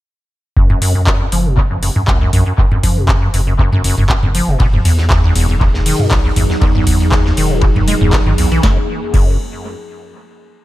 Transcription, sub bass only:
0, 0, Header, 1, 2, 480
1, 0, Start_track
1, 0, Tempo, 504202
1, 539, Time_signature, 4, 2, 24, 8
1, 10136, End_track
2, 0, Start_track
2, 0, Title_t, "Sub bass"
2, 0, Program_c, 0, 38
2, 539, Note_on_c, 0, 30, 98
2, 721, Note_off_c, 0, 30, 0
2, 778, Note_on_c, 0, 42, 97
2, 1212, Note_off_c, 0, 42, 0
2, 1258, Note_on_c, 0, 30, 83
2, 1813, Note_off_c, 0, 30, 0
2, 1978, Note_on_c, 0, 37, 92
2, 2160, Note_off_c, 0, 37, 0
2, 2218, Note_on_c, 0, 34, 90
2, 2313, Note_off_c, 0, 34, 0
2, 2698, Note_on_c, 0, 42, 100
2, 3132, Note_off_c, 0, 42, 0
2, 3178, Note_on_c, 0, 30, 82
2, 3733, Note_off_c, 0, 30, 0
2, 3785, Note_on_c, 0, 30, 96
2, 3960, Note_off_c, 0, 30, 0
2, 4024, Note_on_c, 0, 30, 101
2, 4200, Note_off_c, 0, 30, 0
2, 4264, Note_on_c, 0, 30, 102
2, 4349, Note_off_c, 0, 30, 0
2, 4378, Note_on_c, 0, 28, 97
2, 4561, Note_off_c, 0, 28, 0
2, 4617, Note_on_c, 0, 40, 102
2, 5051, Note_off_c, 0, 40, 0
2, 5097, Note_on_c, 0, 28, 85
2, 5653, Note_off_c, 0, 28, 0
2, 5818, Note_on_c, 0, 35, 95
2, 6000, Note_off_c, 0, 35, 0
2, 6057, Note_on_c, 0, 32, 93
2, 6152, Note_off_c, 0, 32, 0
2, 6538, Note_on_c, 0, 40, 102
2, 6972, Note_off_c, 0, 40, 0
2, 7017, Note_on_c, 0, 28, 84
2, 7573, Note_off_c, 0, 28, 0
2, 7624, Note_on_c, 0, 28, 97
2, 7800, Note_off_c, 0, 28, 0
2, 7865, Note_on_c, 0, 32, 86
2, 7949, Note_off_c, 0, 32, 0
2, 7979, Note_on_c, 0, 35, 81
2, 8073, Note_off_c, 0, 35, 0
2, 8104, Note_on_c, 0, 35, 96
2, 8189, Note_off_c, 0, 35, 0
2, 8218, Note_on_c, 0, 30, 95
2, 8358, Note_off_c, 0, 30, 0
2, 8699, Note_on_c, 0, 30, 95
2, 8922, Note_off_c, 0, 30, 0
2, 10136, End_track
0, 0, End_of_file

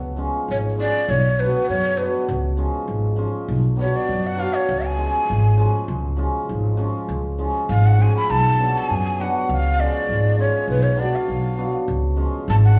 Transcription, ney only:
0, 0, Header, 1, 2, 480
1, 0, Start_track
1, 0, Tempo, 600000
1, 866, Time_signature, 2, 2, 24, 8
1, 10235, End_track
2, 0, Start_track
2, 0, Title_t, "Ney"
2, 0, Program_c, 0, 77
2, 407, Note_on_c, 0, 73, 84
2, 459, Note_off_c, 0, 73, 0
2, 645, Note_on_c, 0, 74, 96
2, 880, Note_on_c, 0, 73, 78
2, 892, Note_off_c, 0, 74, 0
2, 1118, Note_on_c, 0, 71, 80
2, 1130, Note_off_c, 0, 73, 0
2, 1351, Note_off_c, 0, 71, 0
2, 1356, Note_on_c, 0, 73, 92
2, 1580, Note_on_c, 0, 71, 63
2, 1592, Note_off_c, 0, 73, 0
2, 1824, Note_off_c, 0, 71, 0
2, 3041, Note_on_c, 0, 73, 79
2, 3169, Note_on_c, 0, 74, 70
2, 3181, Note_off_c, 0, 73, 0
2, 3414, Note_on_c, 0, 78, 78
2, 3426, Note_off_c, 0, 74, 0
2, 3518, Note_on_c, 0, 77, 83
2, 3530, Note_off_c, 0, 78, 0
2, 3647, Note_on_c, 0, 73, 76
2, 3659, Note_off_c, 0, 77, 0
2, 3887, Note_on_c, 0, 80, 84
2, 3899, Note_off_c, 0, 73, 0
2, 4605, Note_off_c, 0, 80, 0
2, 6161, Note_on_c, 0, 77, 77
2, 6289, Note_on_c, 0, 78, 88
2, 6301, Note_off_c, 0, 77, 0
2, 6416, Note_on_c, 0, 80, 83
2, 6428, Note_off_c, 0, 78, 0
2, 6530, Note_off_c, 0, 80, 0
2, 6535, Note_on_c, 0, 83, 93
2, 6645, Note_on_c, 0, 81, 108
2, 6657, Note_off_c, 0, 83, 0
2, 7025, Note_on_c, 0, 80, 92
2, 7037, Note_off_c, 0, 81, 0
2, 7369, Note_on_c, 0, 78, 72
2, 7381, Note_off_c, 0, 80, 0
2, 7600, Note_off_c, 0, 78, 0
2, 7620, Note_on_c, 0, 77, 85
2, 7842, Note_on_c, 0, 74, 94
2, 7854, Note_off_c, 0, 77, 0
2, 8311, Note_off_c, 0, 74, 0
2, 8316, Note_on_c, 0, 73, 70
2, 8536, Note_off_c, 0, 73, 0
2, 8559, Note_on_c, 0, 71, 72
2, 8666, Note_on_c, 0, 73, 72
2, 8678, Note_off_c, 0, 71, 0
2, 8797, Note_on_c, 0, 74, 70
2, 8809, Note_off_c, 0, 73, 0
2, 8922, Note_on_c, 0, 77, 59
2, 8934, Note_off_c, 0, 74, 0
2, 9399, Note_off_c, 0, 77, 0
2, 9999, Note_on_c, 0, 81, 88
2, 10047, Note_off_c, 0, 81, 0
2, 10119, Note_on_c, 0, 78, 73
2, 10235, Note_off_c, 0, 78, 0
2, 10235, End_track
0, 0, End_of_file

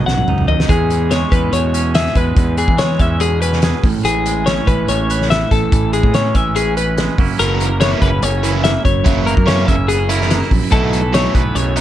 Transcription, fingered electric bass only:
0, 0, Header, 1, 2, 480
1, 0, Start_track
1, 0, Key_signature, 4, "major"
1, 0, Tempo, 417827
1, 800, Time_signature, 4, 2, 24, 8
1, 13565, End_track
2, 0, Start_track
2, 0, Title_t, "Fingered electric bass"
2, 0, Program_c, 0, 33
2, 72, Note_on_c, 0, 35, 80
2, 291, Note_off_c, 0, 35, 0
2, 317, Note_on_c, 0, 37, 67
2, 534, Note_off_c, 0, 37, 0
2, 555, Note_on_c, 0, 39, 67
2, 773, Note_off_c, 0, 39, 0
2, 795, Note_on_c, 0, 40, 75
2, 1424, Note_off_c, 0, 40, 0
2, 1517, Note_on_c, 0, 40, 81
2, 1728, Note_off_c, 0, 40, 0
2, 1755, Note_on_c, 0, 40, 91
2, 2386, Note_off_c, 0, 40, 0
2, 2477, Note_on_c, 0, 40, 81
2, 2690, Note_off_c, 0, 40, 0
2, 2718, Note_on_c, 0, 40, 94
2, 3035, Note_off_c, 0, 40, 0
2, 3083, Note_on_c, 0, 52, 68
2, 3399, Note_off_c, 0, 52, 0
2, 3440, Note_on_c, 0, 40, 84
2, 4280, Note_off_c, 0, 40, 0
2, 4408, Note_on_c, 0, 33, 74
2, 4515, Note_off_c, 0, 33, 0
2, 4641, Note_on_c, 0, 33, 81
2, 5273, Note_off_c, 0, 33, 0
2, 5371, Note_on_c, 0, 33, 85
2, 5582, Note_off_c, 0, 33, 0
2, 5613, Note_on_c, 0, 33, 105
2, 6240, Note_off_c, 0, 33, 0
2, 6333, Note_on_c, 0, 33, 90
2, 6543, Note_off_c, 0, 33, 0
2, 6575, Note_on_c, 0, 33, 86
2, 6889, Note_off_c, 0, 33, 0
2, 6932, Note_on_c, 0, 45, 70
2, 7247, Note_off_c, 0, 45, 0
2, 7293, Note_on_c, 0, 33, 82
2, 8128, Note_off_c, 0, 33, 0
2, 8254, Note_on_c, 0, 30, 72
2, 8360, Note_off_c, 0, 30, 0
2, 8497, Note_on_c, 0, 30, 93
2, 9121, Note_off_c, 0, 30, 0
2, 9209, Note_on_c, 0, 30, 80
2, 9420, Note_off_c, 0, 30, 0
2, 9448, Note_on_c, 0, 30, 100
2, 10075, Note_off_c, 0, 30, 0
2, 10169, Note_on_c, 0, 30, 81
2, 10379, Note_off_c, 0, 30, 0
2, 10411, Note_on_c, 0, 30, 83
2, 10723, Note_off_c, 0, 30, 0
2, 10767, Note_on_c, 0, 42, 81
2, 11080, Note_off_c, 0, 42, 0
2, 11129, Note_on_c, 0, 30, 81
2, 11958, Note_off_c, 0, 30, 0
2, 12076, Note_on_c, 0, 34, 72
2, 12183, Note_off_c, 0, 34, 0
2, 12319, Note_on_c, 0, 35, 92
2, 12941, Note_off_c, 0, 35, 0
2, 13037, Note_on_c, 0, 35, 91
2, 13244, Note_off_c, 0, 35, 0
2, 13269, Note_on_c, 0, 35, 104
2, 13565, Note_off_c, 0, 35, 0
2, 13565, End_track
0, 0, End_of_file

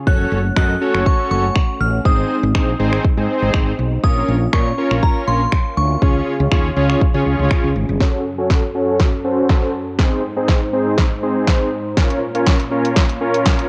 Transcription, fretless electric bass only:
0, 0, Header, 1, 3, 480
1, 0, Start_track
1, 0, Tempo, 495868
1, 67, Time_signature, 4, 2, 24, 8
1, 13251, End_track
2, 0, Start_track
2, 0, Title_t, "Fretless electric bass"
2, 0, Program_c, 0, 35
2, 67, Note_on_c, 0, 30, 99
2, 241, Note_off_c, 0, 30, 0
2, 307, Note_on_c, 0, 30, 93
2, 481, Note_off_c, 0, 30, 0
2, 548, Note_on_c, 0, 42, 105
2, 722, Note_off_c, 0, 42, 0
2, 914, Note_on_c, 0, 30, 87
2, 995, Note_off_c, 0, 30, 0
2, 1266, Note_on_c, 0, 30, 92
2, 1440, Note_off_c, 0, 30, 0
2, 1746, Note_on_c, 0, 33, 87
2, 1921, Note_off_c, 0, 33, 0
2, 1987, Note_on_c, 0, 32, 97
2, 2161, Note_off_c, 0, 32, 0
2, 2354, Note_on_c, 0, 32, 98
2, 2436, Note_off_c, 0, 32, 0
2, 2707, Note_on_c, 0, 32, 91
2, 2881, Note_off_c, 0, 32, 0
2, 3074, Note_on_c, 0, 44, 97
2, 3156, Note_off_c, 0, 44, 0
2, 3314, Note_on_c, 0, 32, 85
2, 3396, Note_off_c, 0, 32, 0
2, 3428, Note_on_c, 0, 32, 90
2, 3602, Note_off_c, 0, 32, 0
2, 3668, Note_on_c, 0, 35, 79
2, 3841, Note_off_c, 0, 35, 0
2, 3907, Note_on_c, 0, 34, 99
2, 4081, Note_off_c, 0, 34, 0
2, 4147, Note_on_c, 0, 34, 99
2, 4321, Note_off_c, 0, 34, 0
2, 4388, Note_on_c, 0, 46, 93
2, 4562, Note_off_c, 0, 46, 0
2, 4754, Note_on_c, 0, 34, 75
2, 4836, Note_off_c, 0, 34, 0
2, 5107, Note_on_c, 0, 34, 88
2, 5281, Note_off_c, 0, 34, 0
2, 5587, Note_on_c, 0, 38, 86
2, 5761, Note_off_c, 0, 38, 0
2, 5827, Note_on_c, 0, 37, 102
2, 6001, Note_off_c, 0, 37, 0
2, 6194, Note_on_c, 0, 37, 95
2, 6276, Note_off_c, 0, 37, 0
2, 6308, Note_on_c, 0, 39, 94
2, 6482, Note_off_c, 0, 39, 0
2, 6547, Note_on_c, 0, 37, 84
2, 6721, Note_off_c, 0, 37, 0
2, 6914, Note_on_c, 0, 49, 92
2, 6996, Note_off_c, 0, 49, 0
2, 7027, Note_on_c, 0, 37, 87
2, 7119, Note_off_c, 0, 37, 0
2, 7155, Note_on_c, 0, 37, 84
2, 7236, Note_off_c, 0, 37, 0
2, 7395, Note_on_c, 0, 37, 79
2, 7477, Note_off_c, 0, 37, 0
2, 7508, Note_on_c, 0, 32, 88
2, 7600, Note_off_c, 0, 32, 0
2, 7635, Note_on_c, 0, 31, 84
2, 7717, Note_off_c, 0, 31, 0
2, 13251, End_track
3, 0, Start_track
3, 0, Title_t, "Muted fretless electric bass strokes"
3, 2949, Note_on_c, 9, 29, 46
3, 3045, Note_off_c, 9, 29, 0
3, 13251, End_track
0, 0, End_of_file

